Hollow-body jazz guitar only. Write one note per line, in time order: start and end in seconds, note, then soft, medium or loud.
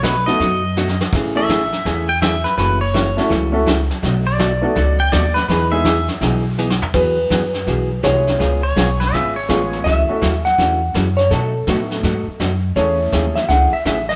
0.03 0.15 B2 medium
0.03 0.15 F#3 medium
0.03 0.15 A3 medium
0.03 0.15 D#4 medium
0.03 0.15 F#4 medium
0.39 0.61 B2 medium
0.39 0.62 F#3 medium
0.39 0.62 A3 medium
0.39 0.62 D#4 medium
0.39 0.62 F#4 medium
0.77 0.88 B2 medium
0.77 0.88 F#3 medium
0.77 0.89 A3 medium
0.77 0.89 D#4 medium
0.77 0.89 F#4 medium
1.15 1.35 C#3 medium
1.15 1.35 E3 medium
1.15 1.35 A3 medium
1.15 1.36 C#4 medium
1.15 1.36 G#4 medium
1.49 1.61 C#3 medium
1.49 1.61 E3 medium
1.49 1.61 A3 medium
1.49 1.61 C#4 medium
1.49 1.61 G#4 medium
1.86 2.07 C#3 medium
1.86 2.08 E3 medium
1.86 2.08 A3 medium
1.86 2.08 C#4 medium
1.86 2.08 G#4 medium
2.22 2.33 C#3 medium
2.22 2.33 E3 medium
2.22 2.34 A3 medium
2.22 2.34 C#4 medium
2.22 2.34 G#4 medium
2.58 2.80 C#3 medium
2.58 2.80 E3 medium
2.58 2.80 A3 medium
2.58 2.80 C#4 medium
2.58 2.80 F#4 medium
2.94 3.06 C#3 medium
2.94 3.06 E3 medium
2.94 3.06 A3 medium
2.94 3.06 C#4 medium
2.94 3.06 F#4 medium
3.29 3.52 C#3 medium
3.29 3.52 E3 medium
3.29 3.52 A3 medium
3.29 3.52 C#4 medium
3.29 3.53 F#4 medium
3.66 3.78 C#3 medium
3.66 3.79 E3 medium
3.66 3.79 A3 medium
3.66 3.79 C#4 medium
3.66 3.79 F#4 medium
4.03 4.25 B2 medium
4.03 4.25 F#3 medium
4.03 4.25 A3 medium
4.03 4.25 D#4 medium
4.03 4.25 F#4 medium
4.39 4.51 B2 medium
4.39 4.51 F#3 medium
4.39 4.51 A3 medium
4.39 4.51 D#4 medium
4.39 4.51 F#4 medium
4.76 4.98 B2 medium
4.76 4.98 F#3 medium
4.76 4.98 A3 medium
4.76 4.98 D#4 medium
4.76 4.98 F#4 medium
5.12 5.24 B2 medium
5.12 5.24 F#3 medium
5.12 5.24 A3 medium
5.12 5.24 D#4 medium
5.12 5.25 F#4 medium
5.50 5.71 E3 medium
5.50 5.71 B3 medium
5.50 5.71 D#4 medium
5.50 5.72 G#4 medium
5.85 5.97 E3 medium
5.85 5.97 B3 medium
5.85 5.97 D#4 medium
5.85 5.97 G#4 medium
6.22 6.44 E3 medium
6.22 6.44 B3 medium
6.22 6.44 D#4 medium
6.22 6.44 G#4 medium
6.59 6.70 E3 medium
6.59 6.70 B3 medium
6.59 6.70 D#4 medium
6.59 6.70 G#4 medium
6.95 7.16 E3 medium
6.95 7.16 F#3 medium
6.95 7.16 B3 medium
6.95 7.17 F#4 medium
6.95 7.17 G#4 medium
7.31 7.42 E3 medium
7.31 7.42 F#3 medium
7.31 7.43 B3 medium
7.31 7.43 F#4 medium
7.31 7.43 G#4 medium
7.68 7.89 E3 medium
7.68 7.89 F#3 medium
7.68 7.89 B3 medium
7.68 7.89 F#4 medium
7.68 7.89 G#4 medium
8.03 8.15 E3 medium
8.03 8.15 F#3 medium
8.03 8.15 B3 medium
8.03 8.15 F#4 medium
8.03 8.15 G#4 medium
8.39 8.61 C#3 medium
8.39 8.61 G#3 medium
8.39 8.62 B3 medium
8.39 8.62 F4 medium
8.39 8.62 G#4 medium
8.76 8.88 C#3 medium
8.76 8.88 G#3 medium
8.76 8.88 B3 medium
8.76 8.88 F4 medium
8.76 8.88 G#4 medium
9.14 9.35 C#3 medium
9.14 9.35 G#3 medium
9.14 9.35 B3 medium
9.14 9.35 F4 medium
9.14 9.35 G#4 medium
9.49 9.60 C#3 medium
9.49 9.61 G#3 medium
9.49 9.61 B3 medium
9.49 9.61 F4 medium
9.49 9.61 G#4 medium
9.85 10.07 C#3 medium
9.85 10.07 E3 medium
9.85 10.07 A3 medium
9.85 10.08 C#4 medium
9.85 10.08 F#4 medium
10.22 10.33 C#3 medium
10.22 10.33 E3 medium
10.22 10.33 A3 medium
10.22 10.34 C#4 medium
10.22 10.34 F#4 medium
10.59 10.80 C#3 medium
10.59 10.80 E3 medium
10.59 10.81 A3 medium
10.59 10.80 C#4 medium
10.59 10.81 F#4 medium
10.96 11.07 C#3 medium
10.96 11.07 E3 medium
10.96 11.07 A3 medium
10.96 11.07 C#4 medium
10.96 11.07 F#4 medium
11.33 11.53 B2 medium
11.33 11.53 F#3 medium
11.33 11.54 A3 medium
11.33 11.54 D#4 medium
11.33 11.54 F#4 medium
11.69 11.79 B2 medium
11.69 11.79 F#3 medium
11.69 11.80 A3 medium
11.69 11.80 D#4 medium
11.69 11.80 F#4 medium
12.04 12.25 B2 medium
12.04 12.25 F#3 medium
12.04 12.26 A3 medium
12.04 12.26 D#4 medium
12.04 12.26 F#4 medium
12.40 12.51 B2 medium
12.40 12.52 F#3 medium
12.40 12.52 A3 medium
12.40 12.52 D#4 medium
12.40 12.52 F#4 medium
12.76 12.98 C#3 medium
12.76 12.98 E3 medium
12.76 12.98 A3 medium
12.76 12.98 C#4 medium
12.76 12.98 G#4 medium
13.13 13.25 C#3 medium
13.13 13.25 E3 medium
13.13 13.25 A3 medium
13.13 13.25 C#4 medium
13.13 13.25 G#4 medium
13.50 13.71 C#3 medium
13.50 13.71 E3 medium
13.50 13.72 A3 medium
13.50 13.72 C#4 medium
13.50 13.72 G#4 medium
13.85 13.97 C#3 medium
13.85 13.97 E3 medium
13.85 13.97 A3 medium
13.85 13.98 C#4 medium
13.85 13.98 G#4 medium